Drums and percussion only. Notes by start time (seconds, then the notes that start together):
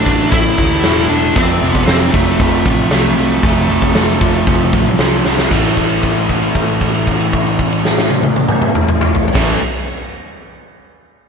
0.06 kick
0.32 kick, open hi-hat
0.58 kick
0.83 snare, open hi-hat
1.36 kick, crash
1.75 kick
1.87 snare, open hi-hat
2.14 kick
2.39 kick, open hi-hat
2.66 kick
2.91 snare, open hi-hat
3.42 kick, open hi-hat
3.82 kick
3.95 snare, open hi-hat
4.21 kick
4.46 kick, open hi-hat
4.73 kick
4.99 snare, open hi-hat
5.25 snare
5.38 snare
5.51 kick, crash
5.77 kick, crash
5.90 crash
6.03 kick, crash
6.17 crash
6.29 kick, crash
6.43 crash
6.55 kick, crash
6.68 crash
6.81 kick, crash
6.95 crash
7.07 kick, crash
7.21 crash
7.33 kick, crash
7.47 crash
7.59 kick, crash
7.72 crash
7.85 snare
7.98 snare
8.10 high tom
8.23 high tom
8.36 high tom
8.49 mid tom
8.62 mid tom
8.75 mid tom
8.88 mid tom
9.01 mid tom
9.15 floor tom
9.28 floor tom
9.35 kick, snare, crash